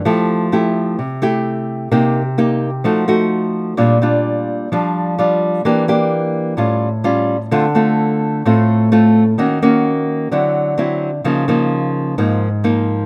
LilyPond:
\new Staff \with { instrumentName = "Nylon-string guitar" } { \time 4/4 \key f \major \tempo 4 = 129 << { <a e' g'>4 <a e' g'>4 r8 <a e' g'>4. | <bes ees' g'>8 r8 <bes ees' g'>8 r8 <a ees' ges'>8 <a ees' ges'>4. | \key bes \major <g d' f'>8 <g d' f'>4. <g d' f'>4 <g d' f'>4 | <bes d' g'>8 <bes d' g'>4. <g cis' eis'>8 r8 <g cis' eis'>8 r8 |
<a c' f'>8 <a c' f'>4. <a c' f'>4 <a c' f'>8 r8 | <bes des' ges'>8 <bes des' ges'>4. <fis c' e'>4 <fis c' e'>8 r8 | <f bes ees'>8 <f bes ees'>4. <f bes ees'>8 r8 <f bes ees'>4 | } \\ { f2 c2 | c2 f2 | bes,2 f2 | e2 a,2 |
d2 a,2 | ees2 d2 | des2 aes,2 | } >> }